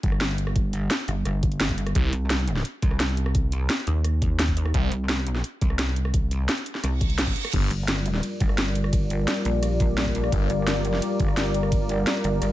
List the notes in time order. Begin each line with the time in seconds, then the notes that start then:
0.03 G1, kick, closed hi-hat
0.12 cross-stick
0.21 snare, closed hi-hat
0.38 closed hi-hat
0.47 cross-stick
0.56 kick, closed hi-hat
0.73 closed hi-hat
0.91 snare, closed hi-hat
1.08 G1, closed hi-hat
1.25 G1, cross-stick, closed hi-hat
1.43 kick, closed hi-hat
1.52 closed hi-hat
1.60 snare, closed hi-hat
1.69 kick, closed hi-hat
1.78 G1, closed hi-hat
1.87 cross-stick, closed hi-hat
1.95 C2, kick, closed hi-hat
2.13 C2, closed hi-hat
2.30 snare, closed hi-hat
2.48 closed hi-hat
2.56 snare
2.65 closed hi-hat
2.82 C2, kick, closed hi-hat
2.91 cross-stick
3.00 snare, closed hi-hat
3.17 closed hi-hat
3.26 cross-stick
3.35 kick, closed hi-hat
3.52 closed hi-hat
3.70 snare, closed hi-hat
3.87 D#2, closed hi-hat
4.04 cross-stick, closed hi-hat
4.22 kick, closed hi-hat
4.39 snare, closed hi-hat
4.48 kick
4.57 closed hi-hat
4.66 cross-stick
4.74 C2, kick, closed hi-hat
4.92 C2, closed hi-hat
5.09 snare, closed hi-hat
5.27 closed hi-hat
5.35 snare
5.44 closed hi-hat
5.61 C2, kick, closed hi-hat
5.70 cross-stick
5.79 snare, closed hi-hat
5.96 closed hi-hat
6.05 cross-stick
6.14 kick, closed hi-hat
6.31 closed hi-hat
6.49 snare, closed hi-hat
6.57 closed hi-hat
6.66 closed hi-hat
6.75 snare
6.84 C2, cross-stick, closed hi-hat, reverse cymbal
7.01 kick, closed hi-hat
7.10 closed hi-hat
7.18 snare, closed hi-hat
7.27 kick
7.36 closed hi-hat
7.45 cross-stick, closed hi-hat
7.53 G1 G3 F4 A#4 D5, kick, closed hi-hat, crash, ride
7.71 G1, closed hi-hat, ride
7.88 snare, closed hi-hat, ride
8.06 closed hi-hat, ride
8.14 snare
8.23 closed hi-hat, ride
8.40 G1, kick, closed hi-hat, ride
8.49 cross-stick
8.58 snare, closed hi-hat, ride
8.75 closed hi-hat, ride
8.84 cross-stick
8.93 kick, closed hi-hat, ride
9.10 closed hi-hat, ride
9.28 snare, closed hi-hat, ride
9.45 A#1, closed hi-hat, ride
9.63 cross-stick, closed hi-hat, ride
9.80 kick, closed hi-hat, ride
9.97 snare, closed hi-hat, ride
10.06 kick
10.15 closed hi-hat, ride
10.24 cross-stick
10.32 G1, kick, closed hi-hat, ride
10.50 G1, closed hi-hat, ride
10.67 snare, closed hi-hat, ride
10.85 closed hi-hat, ride
10.93 snare
11.02 closed hi-hat, ride
11.20 G1, kick, closed hi-hat, ride
11.28 cross-stick
11.37 snare, closed hi-hat, ride
11.54 closed hi-hat, ride
11.63 cross-stick
11.72 kick, closed hi-hat, ride
11.89 closed hi-hat, ride
12.07 snare, closed hi-hat, ride
12.24 G1, closed hi-hat, ride
12.42 G1, cross-stick, closed hi-hat, ride